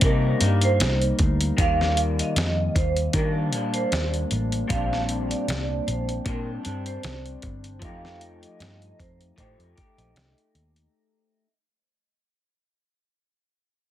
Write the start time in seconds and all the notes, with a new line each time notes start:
0.01 C3 G3 A#3 A#4, kick, closed hi-hat
0.05 D#4
0.41 G2 G3 A#3 D#4, closed hi-hat
0.61 C5, closed hi-hat
0.80 C2, snare, closed hi-hat
1.02 closed hi-hat
1.19 D2, kick, closed hi-hat
1.41 closed hi-hat
1.57 D#2 D#3 G3 F5, kick, closed hi-hat
1.61 A#3
1.81 snare
1.97 closed hi-hat
2.19 D#5, closed hi-hat
2.36 F2 D#5, snare, closed hi-hat
2.75 D#2 C5, kick, closed hi-hat
2.96 closed hi-hat
3.13 D#3 G3 A#3 D4 A#4, kick, closed hi-hat
3.52 A#2 G3 A#3 D4, closed hi-hat
3.74 C5, closed hi-hat
3.92 D#2, snare, closed hi-hat
4.14 closed hi-hat
4.31 A1, closed hi-hat
4.52 closed hi-hat
4.68 A#1 A#2 G3 F5, kick, closed hi-hat
4.72 C4 D4
4.93 snare
5.09 closed hi-hat
5.30 D5, closed hi-hat
5.48 C2 D5, snare, closed hi-hat
5.87 A#1 C5, closed hi-hat
6.09 closed hi-hat
6.25 A#2 G3 C4 D4 A#4, kick, closed hi-hat
6.63 G2 G3 C4 D4, closed hi-hat
6.86 C5, closed hi-hat
7.03 C2, snare, closed hi-hat
7.26 closed hi-hat
7.42 G1, kick, closed hi-hat
7.64 closed hi-hat
7.79 F2 F3 A3 F5, kick, closed hi-hat
7.84 D#4 G4
8.05 snare
8.21 closed hi-hat
8.42 D#5, closed hi-hat
8.59 G2 D#5, snare, closed hi-hat
8.82 closed hi-hat
8.99 F2 C5, kick, closed hi-hat
9.21 closed hi-hat
9.36 A2 F3 A3 D#4 G4 C5, kick, closed hi-hat
9.59 F2, closed hi-hat
9.76 D#4 G4, kick, closed hi-hat
9.80 A3
9.98 A#1 D#5, closed hi-hat
10.16 C2, snare, closed hi-hat
10.38 closed hi-hat
10.55 D#2, closed hi-hat
10.76 closed hi-hat